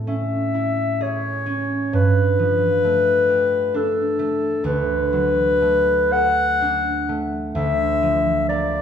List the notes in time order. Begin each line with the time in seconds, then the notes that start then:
Already playing: A2 A3
0.07 C#4 E5
0.54 E4
1.01 G#4 C#5
1.46 C#4
1.93 G2 B4
2.39 F3
2.84 A3
3.29 G4
3.74 D4 A4
4.19 A3
4.64 D2 B4
5.13 F#3
5.62 A3
6.12 A4 F#5
6.62 D4
7.09 A3
7.55 D2 E5
8.02 F3
8.49 A#3 D5